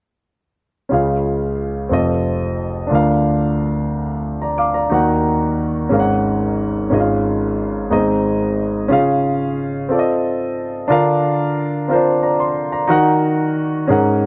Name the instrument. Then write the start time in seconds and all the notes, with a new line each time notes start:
grand piano
0.89 C#2 C#3 C#4 F4 G#4
0.93 F5
1.89 F1 F2 C4 F4 A4
1.93 D#5
2.87 D2 D3 D4 F4
2.92 A#4 F5
4.42 D5 A#5
4.58 F5 D6
4.74 D5 A#5
4.90 D#2 D#3 D#4 F#4 A#4
4.94 F#5
5.89 G#1 G#2 C#4 G#4 A#4 F5
6.00 F#5
6.90 G#1 G#2 C#4 F4 G#4 D#5
7.00 F5
7.89 G#1 G#2 B3 D#4 G#4 D#5
7.95 C4
8.88 C#3 C#4 F4 G#4
8.92 F5
9.89 C4 F4 A4 D5
9.99 D#5
10.88 D3 D4 F4 A#4
10.92 F5
11.88 C4 F4 A#4
11.92 D4 C5
12.23 D5 A#5
12.40 C6
12.72 D5 A#5
12.87 D#3 D#4 F#4 A#4 F#5
13.88 G#2 C#4 G#4 A#4 F#5